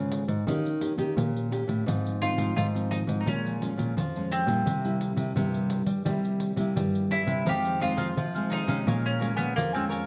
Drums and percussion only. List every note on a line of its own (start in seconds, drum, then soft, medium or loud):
0.12 pandeiro medium
0.28 pandeiro medium
0.48 pandeiro medium
0.66 pandeiro soft
0.81 pandeiro medium
0.98 pandeiro medium
1.18 pandeiro medium
1.36 pandeiro soft
1.52 pandeiro medium
1.69 pandeiro medium
1.88 pandeiro medium
2.06 pandeiro soft
2.22 pandeiro medium
2.38 pandeiro medium
2.58 pandeiro medium
2.76 pandeiro soft
2.92 pandeiro medium
3.09 pandeiro medium
3.27 pandeiro medium
3.46 pandeiro soft
3.62 pandeiro medium
3.79 pandeiro medium
3.98 pandeiro medium
4.16 pandeiro soft
4.32 pandeiro medium
4.48 pandeiro medium
4.67 pandeiro medium
4.85 pandeiro soft
5.01 pandeiro medium
5.17 pandeiro medium
5.37 pandeiro medium
5.54 pandeiro soft
5.70 pandeiro medium
5.86 pandeiro medium
6.06 pandeiro medium
6.25 pandeiro soft
6.40 pandeiro medium
6.57 pandeiro medium
6.77 pandeiro medium
6.95 pandeiro soft
7.11 pandeiro medium
7.28 pandeiro medium
7.47 pandeiro medium
7.65 pandeiro soft
7.81 pandeiro medium
7.98 pandeiro medium
8.17 pandeiro medium
8.36 pandeiro soft
8.52 pandeiro medium
8.69 pandeiro medium
8.88 pandeiro medium
9.06 pandeiro soft
9.22 pandeiro medium
9.39 pandeiro medium
9.58 pandeiro medium
9.76 pandeiro soft
9.92 pandeiro medium